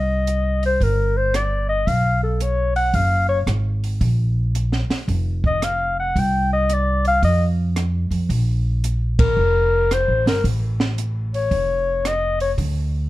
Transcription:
Already playing: C2 D#5
0.27 closed hi-hat
0.63 C5, open hi-hat
0.80 G1 A#4, kick, open hi-hat
1.17 C5
1.34 D5, cross-stick, closed hi-hat
1.69 D#5
1.87 B1 F5, kick, open hi-hat
2.23 A4
2.40 C#5, closed hi-hat
2.76 F#5, open hi-hat
2.93 F#1 F5, kick, open hi-hat
3.29 C#5
3.46 G#1, cross-stick, closed hi-hat
3.84 open hi-hat
4.00 A#1, kick, open hi-hat
4.55 closed hi-hat
4.72 snare
4.89 muted upright bass stroke, snare, open hi-hat
5.08 F1, kick, open hi-hat
5.44 D#5, kick
5.62 F5, cross-stick, closed hi-hat
6.00 F#5
6.16 C2 G5, kick, open hi-hat
6.53 D#5
6.69 D5, closed hi-hat
7.05 F5, open hi-hat
7.23 F2 D#5, kick, open hi-hat
7.76 cross-stick, closed hi-hat
8.11 F2, open hi-hat
8.29 A#1, kick, open hi-hat
8.84 closed hi-hat
9.19 A#4, kick, ride
9.36 F1
9.91 C5, cross-stick, closed hi-hat
10.08 A1
10.26 G1 A#4, snare, open hi-hat
10.44 A1, kick, open hi-hat
10.80 snare
10.98 closed hi-hat
11.34 C#5, open hi-hat
11.51 F1, kick, open hi-hat
12.05 D#5, cross-stick, closed hi-hat
12.40 C#5, open hi-hat
12.58 D2, kick, open hi-hat

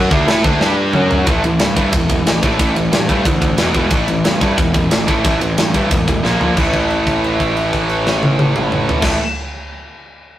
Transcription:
Already playing: F#2 F#3 C#4 F#4
0.11 D2 D3 A3 D4, kick
0.28 A2 A3 E4 A4, snare, crash
0.44 D2 D3 A3 D4, kick
0.60 G2 G3 D4 G4, snare
0.93 F#2 F#3 C#4 F#4, mid tom
1.11 floor tom
1.27 A1 A2 E3 A3, kick, ride
1.44 A1 A2 E3, ride
1.60 G2 A2 E3, snare, ride
1.76 G2 A2 E3 A3, kick, ride
1.93 E1 A2 E3, kick, ride
2.10 A2 E3, kick, ride
2.26 A1 A2 E3, snare, ride
2.42 A1 A2 E3 A3, kick, ride
2.59 A1 A2 E3 A3, kick, ride
2.75 A1 A2 E3, ride
2.92 G2 A2 E3, snare, ride
3.08 G2 A2 E3 A3, kick, ride
3.25 D2 A2 E3, kick, ride
3.41 A2 E3, kick, ride
3.57 E1 E2 B2 E3, snare, ride
3.74 E1 E2 B2 E3, kick, ride
3.90 A1 A2 E3 A3, kick, ride
4.08 A1 A2 E3, ride
4.24 G2 A2 E3, snare, ride
4.41 G2 A2 E3 A3, kick, ride
4.58 E1 A2 E3, kick, ride
4.74 A2 E3, kick, ride
4.91 A1 A2 E3, snare, ride
5.08 A1 A2 E3 A3, kick, ride
5.25 A1 A2 E3 A3, kick, ride
5.41 A1 A2 E3, ride
5.58 G2 A2 E3, snare, ride
5.74 G2 A2 E3 A3, kick, ride
5.91 E1 A2 E3, kick, ride
6.08 A2 E3, kick, ride
6.23 A#1 A#2 F3 A#3, snare
6.40 A#1 A#2 F3 A#3, floor tom
6.56 A1 A2 E3, kick, crash
6.60 A3
6.74 kick, crash
6.90 crash
7.07 kick, crash
7.24 crash
7.40 kick, crash
7.57 crash
7.73 kick, crash
7.89 crash
8.07 snare
8.23 high tom
8.39 high tom
8.56 mid tom
8.72 mid tom
8.89 floor tom
9.02 A1 A2 E3, kick, snare, crash
9.06 A3

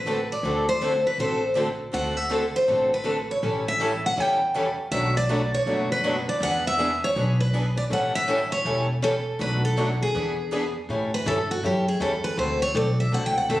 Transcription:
Already playing: A1 B4
0.06 D3 A3 C4 F#4 A4
0.32 D5
0.43 D2 D3 A3 C4 F#4 A4
0.69 C5
0.81 D3 A3 C4 F#4 A4
1.07 B4
1.18 A1 D3 A3 C4 F#4 A4 C5
1.56 D3 A3 C4 F#4 A4
1.92 D2 D3 A3 C4 F#4 A4 F#5
2.17 E5
2.31 D3 A3 C4 F#4 A4
2.56 C5
2.67 A1 D3 A3 C4 F#4 A4
2.94 B4
3.04 D3 A3 C4 F#4 A4
3.31 C#5
3.43 A1 E3 G3 C#4 E4 A4
3.68 E5
3.80 E3 G3 C#4 E4 A4
4.06 F#5
4.17 E2 E3 G3 C#4 E4 A4 G5
4.55 E3 G3 C#4 E4 A4
4.91 B1 B2 F#3 A3 D4 F#4 B4 E5
5.17 D5
5.29 B2 F#3 A3 D4 F#4 B4
5.54 C#5
5.66 F#1 B2 F#3 A3 D4 F#4 B4
5.92 B4
6.04 B2 F#3 A3 D4 F#4 B4
6.29 D5
6.40 E2 E3 B3 D4 G#4 B4 F#5
6.67 E5
6.78 E3 B3 D4 G#4 B4
7.04 C#5
7.16 B1 E3 B3 D4 G#4 B4
7.40 B4
7.53 E3 B3 D4 G#4 B4
7.77 D5
7.90 A1 E3 G3 C#4 E4 A4 F#5
8.15 E5
8.27 E3 G3 C#4 E4 A4
8.52 C#5
8.65 E1 E3 G3 C#4 E4 A4
9.02 E3 G3 C#4 E4 A4
9.39 B1 B2 F#3 A3 D4 F#4 B4
9.65 A4
9.76 B2 F#3 A3 D4 F#4 B4
10.03 G#4
10.15 E2 E3 B3 D4 G#4 B4
10.52 E3 B3 D4 G#4 B4
10.89 A2 E3 G3 C#4 E4 A4
11.14 B4
11.26 G2 E3 G3 C#4 E4 A4
11.51 F#4
11.63 F#2 E3 G3 C#4 E4 G4 A4
11.88 G#4
12.00 E2 E3 G3 C#4 E4 A4
12.24 B4, muted upright bass stroke
12.37 D2 D3 A3 C4 F#4 A4 C5
12.62 C#5
12.74 B1 D3 A3 C4 F#4 A4 D5
13.00 E5
13.12 C2 D3 A3 C4 F#4 A4 F#5
13.26 G5
13.38 F#5
13.49 G1 D3 A3 C4 F#4 A4 E5

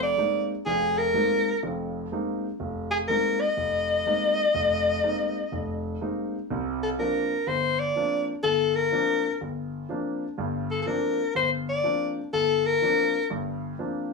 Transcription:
Already playing: F1 F2
0.03 D5
0.17 G#3 A#3 C4 D#4
0.66 F1 F2 G#4
0.98 A#4
1.14 G#3 A#3 C4 D#4
1.63 F1 F2
2.12 G#3 A#3 C4 D#4
2.60 F1
2.91 G#4
3.08 G#3 A#3 C4 D#4 A#4
3.41 D#5
3.57 F1
4.06 G#3 A#3 C4 D#4
4.54 F1
5.03 G#3 A#3 C4 D#4
5.52 F1
6.01 G#3 A#3 C4 D#4
6.50 C2 C3
6.83 A4
6.98 F3 A#3 C4 D4 A#4
7.47 G1 C5
7.79 D5
7.96 F3 A#3 C4 D4
8.43 G1 A4
8.75 A#4
8.92 F3 A#3 C4 D4
9.41 G1
9.89 F3 A#3 C4 D4
10.38 G1 G2
10.71 A4
10.82 F3 A4
10.87 A#3 C4 D4 A#4
11.35 G1 C5
11.69 D5
11.84 F3 A#3 C4 D4
12.33 G1 A4
12.66 A#4
12.82 F3 A#3 C4 D4
13.30 G1 G2
13.79 F3 A#3 C4 D4

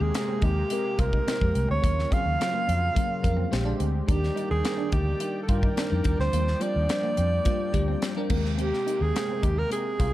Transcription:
Already playing: C3 G#3 A#3 C4 G4 A#4 G5
0.01 D#2 G#4, muted clean electric guitar stroke
0.14 G#3 C4 G4 A4, muted clean electric guitar stroke, snare, closed hi-hat
0.23 A#4
0.29 C4
0.42 D#2 D#4 G4, kick, closed hi-hat
0.70 G#3 C4 G4 A#4, muted clean electric guitar stroke, closed hi-hat
0.99 C2 G#3 C4 F4 G4 A#4, kick, closed hi-hat
1.13 D#4, kick
1.27 D#4, snare, closed hi-hat
1.41 F2 G#3 C4 G4 C5, kick
1.55 C2, muted clean electric guitar stroke, closed hi-hat
1.69 D2 C4 C#5
1.82 D#2 C#3 F#3 A#3 C#4 F4 A#4, kick, closed hi-hat
1.99 snare
2.10 F#3 C4 C#4 F4 G#4 F5, kick, closed hi-hat
2.26 D#2, muted clean electric guitar stroke
2.39 F#3 C#4 F4 A#4, muted clean electric guitar stroke, snare, closed hi-hat
2.53 A#3
2.67 F2 C#4, closed hi-hat
2.95 F#3 A#3 C#4 F4 A#4, kick, closed hi-hat
3.22 F2 F#3 C#4 F4 A#4, muted clean electric guitar stroke, kick, closed hi-hat
3.37 C4
3.51 A#1 D3 G#3 C4 D4 G4 C5, muted clean electric guitar stroke, snare, closed hi-hat
3.64 G#3 D4 G4 C5
3.79 D2 C4, closed hi-hat
4.06 D#2 D#3 G3 A#3 D4 D#4 G4 A#4 D5 G5, kick, closed hi-hat
4.24 snare
4.34 G3 D4 D#4 A#4, closed hi-hat
4.50 D#2 G#4, muted clean electric guitar stroke
4.63 G3 D4 D#4 A#4, muted clean electric guitar stroke, snare, closed hi-hat
4.78 D4
4.92 D2 D#4 G4, kick, closed hi-hat
5.20 G3 D4 D#4 A#4, muted clean electric guitar stroke, closed hi-hat
5.43 A4
5.47 G2 G3 D4 D#4 F4 A#4, kick, closed hi-hat
5.63 D#4, kick
5.77 D4, snare, closed hi-hat
5.89 F2 G3 D4 D#4 A#4
6.03 D#2 F3 G3 D4 F4 A#4, muted clean electric guitar stroke, kick, closed hi-hat
6.19 D2 C4 C5, snare
6.33 D#2 A#3, closed hi-hat
6.47 snare
6.60 G3 C4 D4 F4 A#4 D5, closed hi-hat
6.76 D#2, muted clean electric guitar stroke
6.88 G3 D4 F4 C5, muted clean electric guitar stroke, snare, closed hi-hat
7.03 A#3
7.17 F2 C4, closed hi-hat
7.44 G3 A#3 D4 F4 C5, kick, closed hi-hat
7.72 D2 G3 D4 F4 G4, muted clean electric guitar stroke, kick, closed hi-hat
7.88 C4
8.02 muted clean electric guitar stroke, snare, closed hi-hat
8.16 G3 D4 F4 A#4
8.29 D#2 C3 G#3 A#3 C4 G4 A#4, kick, crash
8.45 snare
8.58 C4 G4, closed hi-hat
8.74 snare
8.86 G#3 C4 D#4 G4 A#4, closed hi-hat
9.00 D#2 G#4, muted clean electric guitar stroke
9.14 G#3 C4 G4 A#4, muted clean electric guitar stroke, snare, closed hi-hat
9.29 C4
9.43 D#2 D#4 G4, kick, closed hi-hat
9.59 A#4
9.69 G#3 C4 G4 G#4 A#4, muted clean electric guitar stroke, closed hi-hat
9.99 C2 G#3 C4 F4 A#4 G5, kick, closed hi-hat

